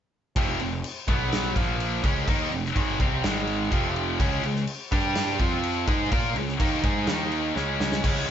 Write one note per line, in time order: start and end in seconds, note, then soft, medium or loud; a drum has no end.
0.36 0.58 F1 medium
0.36 0.59 F2 medium
0.36 0.59 C3 medium
0.36 0.60 F3 loud
0.36 kick loud
0.36 crash medium
0.60 0.83 F1 medium
0.60 0.79 F2 medium
0.60 0.79 C3 medium
0.60 crash medium
0.84 crash medium
1.08 1.53 B1 medium
1.08 1.55 B2 medium
1.08 1.56 F#3 loud
1.08 1.56 B3 loud
1.08 kick loud
1.08 crash medium
1.32 snare loud
1.32 crash medium
1.56 2.01 A#1 medium
1.56 2.03 A#2 medium
1.56 2.03 F3 medium
1.56 2.04 A#3 medium
1.56 kick loud
1.56 crash medium
1.80 crash medium
2.03 2.26 C#2 loud
2.03 2.27 C#3 medium
2.03 2.27 G#3 loud
2.03 2.28 C#4 loud
2.03 kick loud
2.03 crash medium
2.28 2.50 D#2 medium
2.28 2.51 D#3 medium
2.28 2.52 A#3 medium
2.28 2.52 D#4 loud
2.28 kick loud
2.28 crash medium
2.52 2.74 F1 medium
2.52 2.71 F2 medium
2.52 2.72 C3 medium
2.52 crash medium
2.65 snare soft
2.76 2.98 G#1 medium
2.76 2.99 G#2 medium
2.76 3.00 D#3 medium
2.76 3.00 G#3 medium
2.76 kick loud
2.76 crash medium
3.00 3.22 C2 medium
3.00 3.23 C3 medium
3.00 3.24 G3 medium
3.00 3.24 C4 medium
3.00 kick loud
3.00 crash soft
3.24 3.69 G#1 loud
3.24 3.71 G#2 medium
3.24 3.72 D#3 loud
3.24 3.72 G#3 loud
3.24 snare loud
3.24 crash medium
3.47 crash medium
3.71 4.16 F1 loud
3.71 4.19 F2 medium
3.71 4.19 C3 medium
3.71 4.20 F3 medium
3.71 kick loud
3.71 crash medium
3.96 crash medium
4.19 4.42 C#2 loud
4.19 4.43 C#3 medium
4.19 4.43 G#3 loud
4.19 4.44 C#4 loud
4.19 kick loud
4.19 crash medium
4.43 4.66 C#2 medium
4.43 4.63 C#3 medium
4.43 4.63 G#3 medium
4.43 crash medium
4.56 snare soft
4.67 crash medium
4.92 5.37 G2 medium
4.92 5.39 G3 medium
4.92 5.40 D4 medium
4.92 5.40 G4 medium
4.92 kick loud
4.92 crash medium
5.15 snare loud
5.15 crash medium
5.39 5.85 F2 medium
5.39 5.87 F3 medium
5.39 5.87 C4 medium
5.39 5.88 F4 medium
5.39 kick loud
5.39 crash medium
5.64 crash medium
5.87 6.10 G#2 medium
5.87 6.11 G#3 medium
5.87 6.11 D#4 medium
5.87 6.12 G#4 loud
5.87 kick loud
5.87 crash medium
6.11 6.34 A#2 medium
6.11 6.35 A#3 medium
6.11 6.35 F4 medium
6.11 6.35 A#4 medium
6.11 kick loud
6.11 crash medium
6.35 6.58 C#2 medium
6.35 6.55 C#3 medium
6.35 6.55 G#3 medium
6.35 crash medium
6.48 snare soft
6.59 6.82 D#2 medium
6.59 6.83 D#3 medium
6.59 6.83 A#3 medium
6.59 6.83 D#4 medium
6.59 kick loud
6.59 crash medium
6.83 7.06 G#2 medium
6.83 7.08 G#3 medium
6.83 7.07 D#4 medium
6.83 7.08 G#4 loud
6.83 kick loud
6.83 crash medium
7.06 7.52 D#2 medium
7.06 7.55 D#3 medium
7.06 7.55 A#3 loud
7.06 7.55 D#4 loud
7.06 snare loud
7.06 crash medium
7.32 crash medium
7.56 8.00 C#2 loud
7.56 8.02 C#3 medium
7.56 8.03 G#3 medium
7.56 8.04 C#4 loud
7.56 snare medium
7.80 snare medium
7.92 snare medium
8.03 8.26 C#2 loud
8.03 8.27 C#3 medium
8.03 8.27 G#3 medium
8.03 8.27 C#4 medium
8.03 kick loud
8.03 crash loud
8.03 crash medium
8.27 8.31 C#2 medium